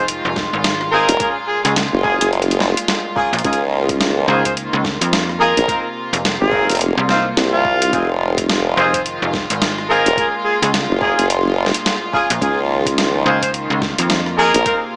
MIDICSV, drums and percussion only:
0, 0, Header, 1, 2, 480
1, 0, Start_track
1, 0, Tempo, 560748
1, 1028, Time_signature, 4, 2, 24, 8
1, 12807, End_track
2, 0, Start_track
2, 0, Title_t, "Drums"
2, 71, Note_on_c, 9, 42, 57
2, 157, Note_off_c, 9, 42, 0
2, 310, Note_on_c, 9, 36, 104
2, 311, Note_on_c, 9, 38, 61
2, 395, Note_off_c, 9, 36, 0
2, 397, Note_off_c, 9, 38, 0
2, 550, Note_on_c, 9, 38, 118
2, 550, Note_on_c, 9, 42, 55
2, 636, Note_off_c, 9, 38, 0
2, 636, Note_off_c, 9, 42, 0
2, 693, Note_on_c, 9, 37, 43
2, 779, Note_off_c, 9, 37, 0
2, 930, Note_on_c, 9, 42, 70
2, 1016, Note_off_c, 9, 42, 0
2, 1027, Note_on_c, 9, 42, 56
2, 1029, Note_on_c, 9, 36, 127
2, 1113, Note_off_c, 9, 42, 0
2, 1115, Note_off_c, 9, 36, 0
2, 1411, Note_on_c, 9, 37, 39
2, 1411, Note_on_c, 9, 42, 67
2, 1497, Note_off_c, 9, 37, 0
2, 1497, Note_off_c, 9, 42, 0
2, 1510, Note_on_c, 9, 38, 124
2, 1510, Note_on_c, 9, 42, 55
2, 1595, Note_off_c, 9, 38, 0
2, 1595, Note_off_c, 9, 42, 0
2, 1750, Note_on_c, 9, 36, 111
2, 1835, Note_off_c, 9, 36, 0
2, 1893, Note_on_c, 9, 42, 68
2, 1978, Note_off_c, 9, 42, 0
2, 1992, Note_on_c, 9, 42, 25
2, 2072, Note_off_c, 9, 42, 0
2, 2072, Note_on_c, 9, 42, 35
2, 2150, Note_off_c, 9, 42, 0
2, 2150, Note_on_c, 9, 42, 42
2, 2229, Note_on_c, 9, 38, 65
2, 2236, Note_off_c, 9, 42, 0
2, 2315, Note_off_c, 9, 38, 0
2, 2374, Note_on_c, 9, 42, 71
2, 2459, Note_off_c, 9, 42, 0
2, 2468, Note_on_c, 9, 37, 38
2, 2468, Note_on_c, 9, 38, 123
2, 2468, Note_on_c, 9, 42, 56
2, 2553, Note_off_c, 9, 37, 0
2, 2553, Note_off_c, 9, 38, 0
2, 2553, Note_off_c, 9, 42, 0
2, 2709, Note_on_c, 9, 36, 113
2, 2795, Note_off_c, 9, 36, 0
2, 2853, Note_on_c, 9, 42, 31
2, 2898, Note_off_c, 9, 42, 0
2, 2898, Note_on_c, 9, 42, 39
2, 2949, Note_off_c, 9, 42, 0
2, 2949, Note_on_c, 9, 36, 127
2, 2949, Note_on_c, 9, 42, 54
2, 3020, Note_off_c, 9, 42, 0
2, 3020, Note_on_c, 9, 42, 57
2, 3035, Note_off_c, 9, 36, 0
2, 3105, Note_off_c, 9, 42, 0
2, 3331, Note_on_c, 9, 36, 110
2, 3332, Note_on_c, 9, 37, 37
2, 3332, Note_on_c, 9, 42, 67
2, 3416, Note_off_c, 9, 36, 0
2, 3418, Note_off_c, 9, 37, 0
2, 3418, Note_off_c, 9, 42, 0
2, 3429, Note_on_c, 9, 38, 127
2, 3429, Note_on_c, 9, 42, 54
2, 3515, Note_off_c, 9, 38, 0
2, 3515, Note_off_c, 9, 42, 0
2, 3810, Note_on_c, 9, 36, 65
2, 3812, Note_on_c, 9, 42, 67
2, 3895, Note_off_c, 9, 36, 0
2, 3898, Note_off_c, 9, 42, 0
2, 3912, Note_on_c, 9, 42, 55
2, 3998, Note_off_c, 9, 42, 0
2, 4146, Note_on_c, 9, 36, 107
2, 4150, Note_on_c, 9, 38, 67
2, 4232, Note_off_c, 9, 36, 0
2, 4235, Note_off_c, 9, 38, 0
2, 4294, Note_on_c, 9, 42, 70
2, 4379, Note_off_c, 9, 42, 0
2, 4391, Note_on_c, 9, 38, 127
2, 4391, Note_on_c, 9, 42, 55
2, 4477, Note_off_c, 9, 38, 0
2, 4477, Note_off_c, 9, 42, 0
2, 4532, Note_on_c, 9, 37, 40
2, 4618, Note_off_c, 9, 37, 0
2, 4771, Note_on_c, 9, 42, 67
2, 4857, Note_off_c, 9, 42, 0
2, 4866, Note_on_c, 9, 36, 126
2, 4870, Note_on_c, 9, 42, 53
2, 4951, Note_off_c, 9, 36, 0
2, 4956, Note_off_c, 9, 42, 0
2, 5251, Note_on_c, 9, 37, 37
2, 5251, Note_on_c, 9, 42, 64
2, 5337, Note_off_c, 9, 37, 0
2, 5337, Note_off_c, 9, 42, 0
2, 5350, Note_on_c, 9, 38, 127
2, 5350, Note_on_c, 9, 42, 53
2, 5436, Note_off_c, 9, 38, 0
2, 5436, Note_off_c, 9, 42, 0
2, 5586, Note_on_c, 9, 36, 110
2, 5672, Note_off_c, 9, 36, 0
2, 5731, Note_on_c, 9, 42, 63
2, 5746, Note_off_c, 9, 42, 0
2, 5746, Note_on_c, 9, 42, 51
2, 5778, Note_off_c, 9, 42, 0
2, 5778, Note_on_c, 9, 42, 34
2, 5796, Note_off_c, 9, 42, 0
2, 5796, Note_on_c, 9, 42, 28
2, 5812, Note_off_c, 9, 42, 0
2, 5812, Note_on_c, 9, 42, 23
2, 5828, Note_off_c, 9, 42, 0
2, 5828, Note_on_c, 9, 42, 54
2, 5914, Note_off_c, 9, 42, 0
2, 6069, Note_on_c, 9, 38, 64
2, 6154, Note_off_c, 9, 38, 0
2, 6310, Note_on_c, 9, 37, 35
2, 6310, Note_on_c, 9, 38, 125
2, 6310, Note_on_c, 9, 42, 51
2, 6396, Note_off_c, 9, 37, 0
2, 6396, Note_off_c, 9, 38, 0
2, 6396, Note_off_c, 9, 42, 0
2, 6547, Note_on_c, 9, 36, 112
2, 6633, Note_off_c, 9, 36, 0
2, 6693, Note_on_c, 9, 42, 67
2, 6778, Note_off_c, 9, 42, 0
2, 6788, Note_on_c, 9, 36, 118
2, 6789, Note_on_c, 9, 42, 50
2, 6873, Note_off_c, 9, 36, 0
2, 6875, Note_off_c, 9, 42, 0
2, 7171, Note_on_c, 9, 36, 106
2, 7173, Note_on_c, 9, 37, 37
2, 7173, Note_on_c, 9, 42, 61
2, 7257, Note_off_c, 9, 36, 0
2, 7258, Note_off_c, 9, 37, 0
2, 7258, Note_off_c, 9, 42, 0
2, 7272, Note_on_c, 9, 38, 119
2, 7272, Note_on_c, 9, 42, 50
2, 7357, Note_off_c, 9, 38, 0
2, 7357, Note_off_c, 9, 42, 0
2, 7651, Note_on_c, 9, 36, 64
2, 7654, Note_on_c, 9, 42, 64
2, 7737, Note_off_c, 9, 36, 0
2, 7739, Note_off_c, 9, 42, 0
2, 7753, Note_on_c, 9, 42, 52
2, 7839, Note_off_c, 9, 42, 0
2, 7989, Note_on_c, 9, 36, 102
2, 7992, Note_on_c, 9, 38, 62
2, 8075, Note_off_c, 9, 36, 0
2, 8078, Note_off_c, 9, 38, 0
2, 8134, Note_on_c, 9, 42, 67
2, 8219, Note_off_c, 9, 42, 0
2, 8232, Note_on_c, 9, 38, 120
2, 8232, Note_on_c, 9, 42, 49
2, 8318, Note_off_c, 9, 38, 0
2, 8318, Note_off_c, 9, 42, 0
2, 8375, Note_on_c, 9, 37, 38
2, 8461, Note_off_c, 9, 37, 0
2, 8613, Note_on_c, 9, 42, 63
2, 8699, Note_off_c, 9, 42, 0
2, 8709, Note_on_c, 9, 36, 116
2, 8713, Note_on_c, 9, 42, 51
2, 8795, Note_off_c, 9, 36, 0
2, 8798, Note_off_c, 9, 42, 0
2, 9096, Note_on_c, 9, 37, 37
2, 9096, Note_on_c, 9, 42, 62
2, 9182, Note_off_c, 9, 37, 0
2, 9182, Note_off_c, 9, 42, 0
2, 9193, Note_on_c, 9, 38, 117
2, 9193, Note_on_c, 9, 42, 53
2, 9279, Note_off_c, 9, 38, 0
2, 9279, Note_off_c, 9, 42, 0
2, 9429, Note_on_c, 9, 36, 104
2, 9514, Note_off_c, 9, 36, 0
2, 9577, Note_on_c, 9, 42, 63
2, 9663, Note_off_c, 9, 42, 0
2, 9673, Note_on_c, 9, 42, 52
2, 9759, Note_off_c, 9, 42, 0
2, 9984, Note_on_c, 9, 38, 61
2, 10053, Note_on_c, 9, 42, 65
2, 10069, Note_off_c, 9, 38, 0
2, 10139, Note_off_c, 9, 42, 0
2, 10152, Note_on_c, 9, 37, 37
2, 10152, Note_on_c, 9, 38, 115
2, 10152, Note_on_c, 9, 42, 51
2, 10238, Note_off_c, 9, 37, 0
2, 10238, Note_off_c, 9, 38, 0
2, 10238, Note_off_c, 9, 42, 0
2, 10388, Note_on_c, 9, 36, 104
2, 10473, Note_off_c, 9, 36, 0
2, 10531, Note_on_c, 9, 42, 62
2, 10617, Note_off_c, 9, 42, 0
2, 10627, Note_on_c, 9, 36, 113
2, 10631, Note_on_c, 9, 42, 54
2, 10713, Note_off_c, 9, 36, 0
2, 10716, Note_off_c, 9, 42, 0
2, 11010, Note_on_c, 9, 36, 103
2, 11014, Note_on_c, 9, 37, 41
2, 11014, Note_on_c, 9, 42, 62
2, 11095, Note_off_c, 9, 36, 0
2, 11099, Note_off_c, 9, 37, 0
2, 11099, Note_off_c, 9, 42, 0
2, 11111, Note_on_c, 9, 38, 116
2, 11111, Note_on_c, 9, 42, 53
2, 11197, Note_off_c, 9, 38, 0
2, 11197, Note_off_c, 9, 42, 0
2, 11490, Note_on_c, 9, 36, 61
2, 11493, Note_on_c, 9, 42, 66
2, 11575, Note_off_c, 9, 36, 0
2, 11579, Note_off_c, 9, 42, 0
2, 11591, Note_on_c, 9, 42, 53
2, 11676, Note_off_c, 9, 42, 0
2, 11828, Note_on_c, 9, 36, 101
2, 11828, Note_on_c, 9, 38, 60
2, 11913, Note_off_c, 9, 36, 0
2, 11914, Note_off_c, 9, 38, 0
2, 11971, Note_on_c, 9, 42, 68
2, 12056, Note_off_c, 9, 42, 0
2, 12067, Note_on_c, 9, 38, 115
2, 12067, Note_on_c, 9, 42, 50
2, 12153, Note_off_c, 9, 38, 0
2, 12153, Note_off_c, 9, 42, 0
2, 12210, Note_on_c, 9, 37, 42
2, 12295, Note_off_c, 9, 37, 0
2, 12450, Note_on_c, 9, 42, 66
2, 12536, Note_off_c, 9, 42, 0
2, 12547, Note_on_c, 9, 42, 54
2, 12548, Note_on_c, 9, 36, 116
2, 12633, Note_off_c, 9, 42, 0
2, 12634, Note_off_c, 9, 36, 0
2, 12807, End_track
0, 0, End_of_file